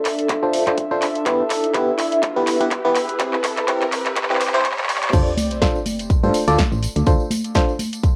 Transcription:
0.00 2.04 D4 medium
0.00 2.04 A4 medium
0.00 3.98 E5 medium
0.00 riser medium
0.05 clap medium
0.05 open hi-hat medium
0.19 closed hi-hat medium
0.29 kick loud
0.29 clap medium
0.29 closed hi-hat medium
0.43 0.64 D4 medium
0.43 0.64 F4 medium
0.43 0.64 A4 medium
0.43 0.64 C5 medium
0.53 open hi-hat loud
0.67 0.81 D4 medium
0.67 0.81 F4 medium
0.67 0.81 A4 medium
0.67 0.81 C5 medium
0.67 clap medium
0.67 closed hi-hat soft
0.78 kick loud
0.78 closed hi-hat medium
0.91 1.05 D4 medium
0.91 1.05 F4 medium
0.91 1.05 A4 medium
0.91 1.05 C5 medium
1.02 clap medium
1.02 open hi-hat medium
1.15 closed hi-hat medium
1.26 1.42 B3 medium
1.26 1.42 E4 medium
1.26 3.87 E4 medium
1.26 1.42 G4 medium
1.26 1.42 B4 medium
1.26 kick loud
1.26 clap medium
1.26 closed hi-hat medium
1.50 clap medium
1.50 open hi-hat loud
1.64 closed hi-hat medium
1.74 1.91 B3 medium
1.74 1.91 E4 medium
1.74 1.91 G4 medium
1.74 1.91 B4 medium
1.74 kick loud
1.74 clap medium
1.74 closed hi-hat medium
1.98 3.98 B4 medium
1.98 clap medium
1.98 open hi-hat medium
2.12 closed hi-hat medium
2.23 kick loud
2.23 clap medium
2.23 closed hi-hat medium
2.36 2.57 B3 medium
2.36 2.57 E4 medium
2.36 2.57 G4 medium
2.36 2.57 B4 medium
2.47 clap medium
2.47 open hi-hat loud
2.61 2.75 B3 medium
2.61 2.75 E4 medium
2.61 2.75 G4 medium
2.61 2.75 B4 medium
2.61 closed hi-hat soft
2.71 kick loud
2.71 clap medium
2.71 closed hi-hat medium
2.85 2.99 B3 medium
2.85 2.99 E4 medium
2.85 2.99 G4 medium
2.85 2.99 B4 medium
2.95 clap medium
2.95 open hi-hat loud
3.09 closed hi-hat medium
3.20 3.36 C4 medium
3.20 5.13 C4 medium
3.20 3.36 E4 medium
3.20 3.36 G4 medium
3.20 3.36 B4 medium
3.20 kick loud
3.20 clap medium
3.20 closed hi-hat medium
3.33 clap medium
3.44 5.13 G4 medium
3.44 clap loud
3.44 open hi-hat loud
3.57 clap medium
3.57 closed hi-hat medium
3.68 3.84 C4 medium
3.68 3.84 E4 medium
3.68 3.84 G4 medium
3.68 3.84 B4 medium
3.68 kick loud
3.68 clap loud
3.68 closed hi-hat medium
3.82 clap medium
3.82 closed hi-hat soft
3.92 clap loud
3.92 open hi-hat medium
4.06 5.13 D5 medium
4.06 clap medium
4.06 closed hi-hat medium
4.16 kick loud
4.16 clap loud
4.16 closed hi-hat medium
4.23 clap medium
4.30 4.51 C4 medium
4.30 4.51 E4 medium
4.30 4.51 G4 medium
4.30 4.51 B4 medium
4.30 clap medium
4.35 clap medium
4.41 clap loud
4.41 open hi-hat loud
4.47 clap medium
4.54 4.68 C4 loud
4.54 4.68 E4 medium
4.54 4.68 G4 medium
4.54 4.68 C5 loud
4.54 clap medium
4.54 closed hi-hat soft
4.60 clap medium
4.65 kick loud
4.65 clap loud
4.65 closed hi-hat medium
4.72 clap medium
4.78 clap medium
4.78 closed hi-hat soft
4.84 clap loud
4.89 clap loud
4.89 open hi-hat medium
4.96 clap loud
5.03 clap loud
5.03 closed hi-hat soft
5.08 clap loud
5.13 5.22 D2 loud
5.13 5.29 D4 medium
5.13 5.29 F4 medium
5.13 5.29 A4 medium
5.13 5.29 C5 medium
5.13 kick loud
5.13 closed hi-hat medium
5.13 crash loud
5.13 tambourine soft
5.13 sub drop medium
5.26 tambourine soft
5.37 open hi-hat loud
5.37 tambourine medium
5.37 high conga loud
5.50 closed hi-hat medium
5.50 tambourine soft
5.62 5.78 D4 medium
5.62 5.78 F4 medium
5.62 5.78 A4 medium
5.62 5.78 C5 medium
5.62 kick loud
5.62 snare loud
5.62 closed hi-hat medium
5.62 tambourine soft
5.75 tambourine soft
5.86 open hi-hat medium
5.86 tambourine medium
5.86 high conga medium
5.99 closed hi-hat medium
5.99 tambourine soft
6.10 kick loud
6.10 closed hi-hat medium
6.10 tambourine soft
6.23 6.31 G2 medium
6.23 6.44 D4 medium
6.23 6.44 F4 medium
6.23 6.44 A4 medium
6.23 6.44 C5 medium
6.23 tambourine soft
6.23 high conga medium
6.34 open hi-hat loud
6.34 tambourine medium
6.48 6.63 D2 medium
6.48 6.62 D4 medium
6.48 6.62 F4 medium
6.48 6.62 A4 medium
6.48 6.62 D5 loud
6.48 closed hi-hat medium
6.48 tambourine soft
6.58 kick loud
6.58 snare loud
6.58 closed hi-hat medium
6.58 tambourine medium
6.58 high conga medium
6.72 6.87 A1 medium
6.72 tambourine soft
6.83 open hi-hat medium
6.83 tambourine medium
6.96 7.03 D2 medium
6.96 closed hi-hat medium
6.96 tambourine soft
6.96 high conga medium
7.06 7.16 D2 loud
7.06 7.23 D4 medium
7.06 7.23 F4 medium
7.06 7.23 A4 medium
7.06 7.23 C5 medium
7.06 kick loud
7.06 closed hi-hat medium
7.06 tambourine medium
7.20 tambourine soft
7.30 open hi-hat loud
7.30 tambourine loud
7.30 high conga loud
7.44 closed hi-hat medium
7.44 tambourine soft
7.55 7.71 D4 medium
7.55 7.71 F4 medium
7.55 7.71 A4 medium
7.55 7.71 C5 medium
7.55 kick loud
7.55 snare loud
7.55 closed hi-hat medium
7.55 tambourine medium
7.69 tambourine soft
7.79 open hi-hat loud
7.79 tambourine loud
7.79 high conga medium
7.93 closed hi-hat medium
7.93 tambourine soft
8.03 kick loud
8.03 closed hi-hat medium
8.03 tambourine medium

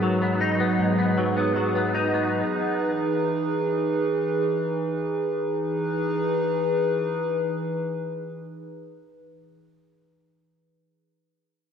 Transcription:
0.00 0.78 G#2 medium
0.00 2.30 F#3 medium
0.00 1.16 F#3 medium
0.00 0.21 B3 medium
0.00 5.37 D#4 medium
0.00 5.37 G#4 medium
0.00 5.37 B4 medium
0.22 0.60 B3 medium
0.41 1.94 D#4 medium
0.60 0.98 B3 medium
0.79 2.41 G#2 medium
0.98 1.36 B3 medium
1.18 1.55 F#3 medium
1.37 1.75 B3 medium
1.56 2.41 F#3 medium
1.75 2.14 B3 medium
1.95 2.91 D#4 medium
2.14 2.91 B3 medium
2.34 5.38 E3 medium
5.42 9.25 E3 medium
5.42 9.25 D#4 medium
5.42 9.25 G#4 medium
5.42 9.25 B4 medium

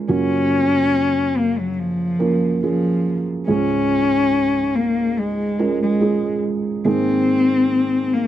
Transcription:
0.00 0.10 G#3 medium
0.00 0.08 C#4 soft
0.00 0.09 F4 soft
0.00 0.11 A#4 medium
0.08 3.44 F#2 soft
0.08 3.44 C#3 soft
0.08 1.69 A#3 soft
0.08 1.69 C#4 soft
0.08 1.39 C#4 medium
0.08 1.69 F4 soft
0.08 1.70 F#4 medium
1.38 1.61 A#3 medium
1.59 1.82 F#3 medium
1.80 2.64 F3 medium
2.19 2.60 A#3 soft
2.19 2.60 C#4 soft
2.19 2.61 F4 soft
2.19 2.60 A#4 medium
2.63 3.24 F3 medium
2.63 3.44 A#3 soft
2.63 3.44 C#4 soft
2.63 3.44 F4 soft
2.63 3.44 G#4 soft
3.47 6.82 C#2 soft
3.47 6.82 G#2 soft
3.47 5.09 G#3 soft
3.47 5.09 C#4 soft
3.47 4.78 C#4 medium
3.47 5.09 F4 soft
3.47 5.09 G#4 medium
4.76 5.20 A#3 medium
5.19 5.81 G#3 medium
5.59 5.99 G#3 medium
5.59 5.99 C#4 soft
5.59 5.99 F4 soft
5.59 5.99 A#4 medium
5.82 6.40 G#3 medium
6.00 6.81 G#3 soft
6.00 6.81 C#4 soft
6.00 6.81 F4 soft
6.00 6.81 G#4 soft
6.85 8.27 G#2 soft
6.85 8.27 D#3 soft
6.85 8.27 A#3 soft
6.85 8.27 C4 soft
6.85 8.15 C4 medium
6.85 8.27 D#4 soft
6.85 8.27 G#4 medium
8.13 8.27 A#3 medium

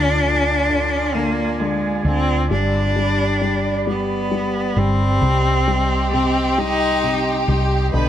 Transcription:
0.00 2.01 D2 medium
0.00 0.22 D3 medium
0.00 1.17 D4 loud
0.00 2.46 F4 medium
0.00 5.18 D5 medium
0.00 2.47 G#5 medium
0.24 0.68 D3 medium
0.69 1.13 D3 medium
1.15 1.58 D3 medium
1.15 1.62 A#3 loud
1.60 2.04 D3 soft
1.60 2.07 G#3 medium
2.04 2.47 D2 medium
2.04 2.49 D3 soft
2.04 2.51 C4 loud
2.50 4.72 G1 medium
2.50 2.94 G3 medium
2.50 3.83 D4 medium
2.50 5.19 G4 medium
2.50 5.19 B5 medium
2.96 3.40 G3 medium
3.41 3.86 G3 medium
3.87 4.30 G3 medium
3.87 4.79 B3 medium
4.31 4.75 G3 medium
4.76 5.19 G1 medium
4.76 5.21 G3 soft
4.76 6.12 C4 loud
5.21 7.44 C2 medium
5.21 6.12 C3 medium
5.21 8.09 G4 medium
5.21 7.89 G4 medium
5.21 7.91 D#5 medium
5.21 7.91 C6 medium
5.67 6.57 G3 medium
6.13 7.02 C3 medium
6.13 6.61 C4 medium
6.58 7.47 G3 medium
6.58 7.49 D#4 loud
7.03 7.91 C3 medium
7.48 7.90 C2 medium
7.48 7.92 G3 soft
7.93 8.09 B1 medium
7.93 8.09 D3 medium
7.93 8.09 B3 medium
7.93 8.09 B4 loud
7.93 8.09 D5 medium
7.93 8.09 B5 medium

